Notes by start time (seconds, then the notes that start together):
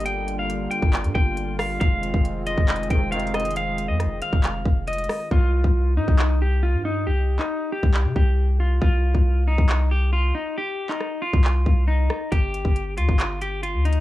Already playing: G1 D3 G3 A#3
0.00 closed hi-hat
0.06 F4 G5, closed hi-hat
0.28 closed hi-hat
0.39 F5
0.50 closed hi-hat
0.71 G5, closed hi-hat
0.82 G1, kick
0.93 clap, closed hi-hat
1.04 G2, closed hi-hat
1.15 G1 G5, kick
1.37 closed hi-hat
1.59 F5, cross-stick, open hi-hat
1.80 F1 D#3 G#3 C4 F5, kick, closed hi-hat
2.03 closed hi-hat
2.14 F1, kick
2.25 closed hi-hat
2.47 D#5, closed hi-hat
2.58 F1, kick
2.69 clap, closed hi-hat
2.76 closed hi-hat
2.83 closed hi-hat
2.90 F1 G#2 C3 D#3 G5, kick, closed hi-hat
3.12 G#2 C3 D#3 F5, closed hi-hat
3.20 closed hi-hat
3.27 closed hi-hat
3.34 D#5, cross-stick, closed hi-hat
3.40 closed hi-hat
3.45 closed hi-hat
3.51 closed hi-hat
3.56 F5, closed hi-hat
3.78 closed hi-hat
3.88 F2 D#5
4.00 cross-stick, closed hi-hat
4.05 F1
4.22 F5, closed hi-hat
4.33 F1, kick
4.44 clap, closed hi-hat
4.65 F1, kick
4.87 D#5, closed hi-hat
4.93 closed hi-hat
4.98 closed hi-hat
5.04 closed hi-hat
5.09 cross-stick, open hi-hat
5.31 C2 F4, kick
5.64 C2, kick
5.97 G2 D#4
6.08 C2, kick
6.19 clap
6.42 G4
6.63 F4
6.74 G2
6.85 D#4
7.06 C2 G4
7.39 D#4, clap
7.72 G4
7.83 C2, kick
7.94 clap
8.05 C3
8.16 C2 G4, kick
8.60 F4
8.82 C2 F4, kick
9.15 C2, kick
9.48 D#4
9.58 C2, kick
9.69 clap
9.91 G4
10.13 F4
10.35 D#4
10.58 G4
10.89 D#4, clap
11.01 cross-stick
11.22 F4
11.33 C2, kick
11.44 clap
11.66 C2, kick
11.88 D#4
12.10 cross-stick
12.32 G1 G4, kick, closed hi-hat
12.54 closed hi-hat
12.65 G1, kick
12.76 closed hi-hat
12.98 D2 F4, closed hi-hat
13.09 G1, kick
13.20 clap, closed hi-hat
13.41 G4, closed hi-hat
13.63 F4, closed hi-hat
13.74 D2
13.85 D#4, closed hi-hat
13.93 closed hi-hat